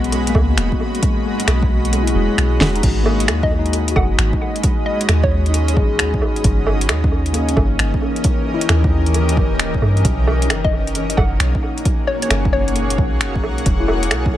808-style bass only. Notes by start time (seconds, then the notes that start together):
Already playing: B1
0.35 C#2
0.57 E1
1.47 B1
2.15 E1
2.38 B1
2.60 E1
2.83 G#1
3.28 D#2
3.96 F#1
4.18 G#1
5.09 D#2
5.77 G#1
5.99 D#2
6.21 G#1
6.44 G1
6.89 D#2
7.57 G1
7.79 G1
8.69 D#2
9.37 G1
9.51 D#1
9.82 G2
10.05 B1
10.50 F#1
11.17 F#1
11.40 B1
12.30 F#1
12.98 B1
13.21 F#1
13.43 B1
13.66 E1
14.11 B1